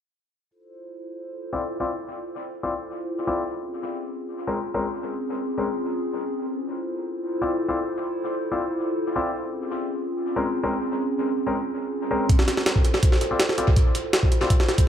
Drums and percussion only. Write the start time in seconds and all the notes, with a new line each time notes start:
12.29 kick, closed hi-hat
12.39 snare
12.48 snare, closed hi-hat
12.57 snare
12.66 snare, closed hi-hat
12.76 kick
12.85 closed hi-hat
12.94 snare
13.03 kick, closed hi-hat
13.12 snare
13.21 closed hi-hat
13.40 snare, closed hi-hat
13.49 snare
13.58 closed hi-hat
13.68 kick
13.76 kick, closed hi-hat
13.95 closed hi-hat
14.13 snare, closed hi-hat
14.23 kick
14.32 closed hi-hat
14.41 snare
14.50 kick, closed hi-hat
14.60 snare
14.69 snare, closed hi-hat
14.78 kick, closed hi-hat